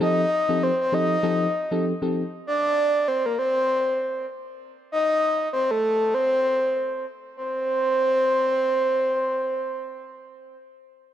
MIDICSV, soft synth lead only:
0, 0, Header, 1, 2, 480
1, 0, Start_track
1, 0, Tempo, 612245
1, 5, Time_signature, 4, 2, 24, 8
1, 8732, End_track
2, 0, Start_track
2, 0, Title_t, "Soft synth lead"
2, 0, Program_c, 0, 80
2, 15, Note_on_c, 0, 75, 122
2, 496, Note_on_c, 0, 72, 99
2, 507, Note_off_c, 0, 75, 0
2, 630, Note_off_c, 0, 72, 0
2, 636, Note_on_c, 0, 72, 88
2, 737, Note_on_c, 0, 75, 106
2, 749, Note_off_c, 0, 72, 0
2, 1451, Note_off_c, 0, 75, 0
2, 1937, Note_on_c, 0, 74, 127
2, 2415, Note_on_c, 0, 72, 102
2, 2426, Note_off_c, 0, 74, 0
2, 2554, Note_on_c, 0, 70, 85
2, 2566, Note_off_c, 0, 72, 0
2, 2650, Note_off_c, 0, 70, 0
2, 2656, Note_on_c, 0, 72, 96
2, 3339, Note_off_c, 0, 72, 0
2, 3857, Note_on_c, 0, 75, 127
2, 4300, Note_off_c, 0, 75, 0
2, 4336, Note_on_c, 0, 72, 94
2, 4475, Note_on_c, 0, 69, 94
2, 4487, Note_off_c, 0, 72, 0
2, 4815, Note_on_c, 0, 72, 100
2, 4827, Note_off_c, 0, 69, 0
2, 5530, Note_off_c, 0, 72, 0
2, 5776, Note_on_c, 0, 72, 105
2, 8286, Note_off_c, 0, 72, 0
2, 8732, End_track
0, 0, End_of_file